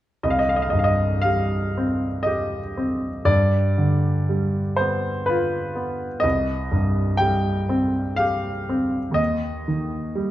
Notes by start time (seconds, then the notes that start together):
0.23 C2 D#5
0.30 F5
0.39 D#5
0.49 F5
0.56 D#5
0.62 F5
0.70 G2 D#5
0.79 F5
0.84 D#5
1.21 G3 F5
1.77 C4
2.23 G4 D#5
2.77 C4
3.25 G2 D5
3.78 D3
4.29 G3
4.76 B3 C5
5.26 F4 B4
5.75 B3
6.20 C2 D#5
6.71 G2
7.17 G3 G5
7.69 C4
8.16 G4 F5
8.69 C4
9.11 D#2 D#5
9.68 D#3
10.15 G3